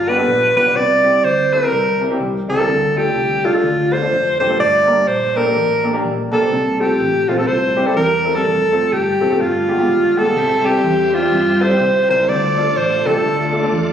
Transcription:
Already playing: G1 G2 F4
0.08 B3 D4 F4 G4 B4
0.18 B3 D4 F4 A4
0.28 A#1
0.56 B1 B3 D4 F4 G4 B4
0.65 B3 D4 F4 G4
0.76 C2 C3 D5
1.04 G3 C4 E4 G4
1.24 D2 C5
1.52 G3 C4 E4 A4 A#4
1.62 G3 C4 E4 A4
1.72 C2
2.01 G3 C4 E4 A#4
2.10 G3 C4 E4 G4
2.20 C2
2.48 C#2 G3 C4 E4 G4 A4
2.57 G3 C4 E4 A#4
2.68 D2 D3
2.96 A3 D4 F4 G4 A4
3.16 C2
3.44 A3 D4 F4 A4
3.54 A3 D4 F4 A4
3.64 D2
3.93 A3 D4 F4 C5
4.02 A3 D4 F4 C5
4.12 F1
4.40 F#1 A3 D4 F4 G4 C5
4.49 A3 D4 F4 A4
4.59 G1 G2 D5
4.87 A#3 D4 G4 A#4
5.07 A#1 C5
5.36 A#3 D4 G4 A4 A#4
5.45 A#3 D4 G4 A4
5.56 A1
5.83 A#3 D4 G4 A4
5.93 A#3 D4 G4 A#4
6.04 A#1
6.31 B1 A#3 D4 G4 A4 A#4
6.41 A#3 D4 G4 C5
6.51 C2 C3
6.80 A3 C4 F4 G4 A4
7.00 A1
7.28 A#1 A3 C4 F4 C5
7.38 A3 C4 F4 A4
7.47 C2 C3 C5
7.76 G3 C4 E4 G4
7.86 G3 C4 E4 G4 A4
7.96 E2 A#4
8.25 G3 C4 E4 A4
8.34 G3 C4 E4 A4
8.45 F1
8.72 A3 C4 F4 A4
8.93 G1 G4
9.20 F1 A3 C4 F4 A4
9.30 A3 C4 F4 A4
9.39 G1 G2 F4
9.68 G#3 B3 F4 G4
9.78 G#3 B3 F4 G4
9.89 G#1
10.16 G#3 B3 F4 G4 A4
10.26 G#3 B3 F4 G#4
10.36 C2 C3 C4 G4 E5
10.64 G3 C4 E4 G4
10.84 E2
11.13 G3 C4 E4 F4 G4
11.22 G3 C4 E4 G4
11.32 G2
11.61 G3 C4 E4 A4 C5
11.70 G3 C4 E4 G4
11.80 C2
12.08 C#2 G3 C4 E4 A#4 C5
12.19 G3 C4 E4 A#4
12.28 D2 D3 A3 D4 E4 D5
12.35 F4
12.56 A3 D4 F4 A4
12.76 A1 C5
13.05 C2 A3 D4 F4 G4 A4
13.15 A3 D4 F4 A4
13.24 D2
13.52 A3 D4 F4 A4
13.62 A3 D4 F4 A4
13.72 E2

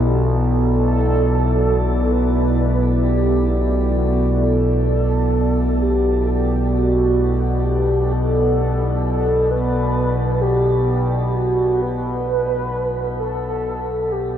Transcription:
Already playing: B1 B2 B3 E4 G4 A4 D5
0.25 A4
0.74 A4
2.12 B4
3.03 G4
3.49 G4
3.97 F#4
4.43 A4
5.82 G4
6.28 G4
6.73 F#4
7.63 G4
8.12 A4
9.04 A4
9.51 B4
10.41 G4
11.35 F#4
11.82 B4
13.20 A4
14.12 G4

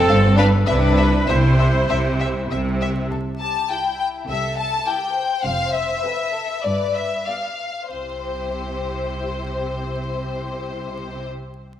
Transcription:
Already playing: C4 A4
0.08 G1 G2 F5
0.37 D4 B4 F5
0.66 C2 C3 D4 B4 E5
0.97 E5
1.28 C2 C3 E4 C5 E5
1.59 E5
1.89 C2 C3 E5
2.20 E5
2.50 C2 C3 E5
2.81 E5
3.11 C2 C3 A4
3.40 G4 A5
3.69 E4 G4 G5
3.99 G5
4.28 C2 C3 A4 E5
4.58 A5
4.86 E4 G4 A#4 G5
5.16 C5
5.44 F1 F2 F5
5.73 E5
6.03 C4 A4 B4
6.33 A4
6.62 G1 G2 B4 D5
6.94 E5
7.26 B3 G4 D5 F5
7.91 C2 C3 C4 E4 G4 C5

